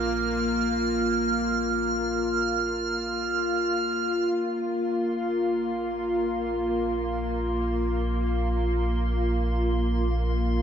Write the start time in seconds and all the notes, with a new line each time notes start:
Already playing: A#1 A#3 F4 F6
4.31 A#1 A#3 F4 C6